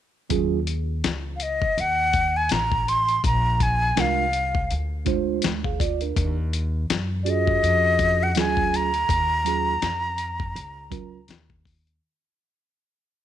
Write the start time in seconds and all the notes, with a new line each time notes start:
0.30 D#2 F#3 C#4 F4 G#4, kick, closed hi-hat
0.67 closed hi-hat
1.04 C#2, snare, closed hi-hat
1.36 F5, closed hi-hat
1.43 D#5
1.62 muted upright bass stroke, kick
1.77 D#2 F#5, closed hi-hat
2.13 kick, closed hi-hat
2.37 G#5
2.49 A1 A#5, snare, closed hi-hat
2.72 kick
2.88 C6, closed hi-hat
3.08 closed hi-hat
3.24 A#1 A#5, kick, closed hi-hat
3.60 G#5, kick, closed hi-hat
3.96 C2 G#3 D4 F4 A#4, snare, closed hi-hat
4.00 F5
4.33 closed hi-hat
4.55 kick
4.71 D2, closed hi-hat
5.05 G#3 D4 F4 C5, kick, closed hi-hat
5.42 D2, snare, closed hi-hat
5.64 G#4 F5, kick
5.80 F4 D5, kick, closed hi-hat
6.01 D4 A#4, closed hi-hat
6.16 D#2, kick, closed hi-hat
6.53 closed hi-hat
6.90 F#2, snare, closed hi-hat
7.23 C#4 F4 F#4 D5, closed hi-hat
7.28 G#4 D#5
7.47 kick
7.63 F2, closed hi-hat
7.99 kick, closed hi-hat
8.23 F#5
8.35 D2 F#3 C#4 F4 G#4, snare, closed hi-hat
8.39 G#5
8.57 kick
8.74 A#5, closed hi-hat
8.94 closed hi-hat
9.09 D#2, kick, closed hi-hat
9.45 F#3 C#4 F4 G#4, closed hi-hat
9.82 F2, snare, closed hi-hat
10.18 closed hi-hat
10.40 kick
10.55 C#2, closed hi-hat
10.90 F#3 C#4 F4 A#4, kick, closed hi-hat
11.28 D#2, snare, closed hi-hat
11.50 kick
11.65 kick, open hi-hat
11.87 closed hi-hat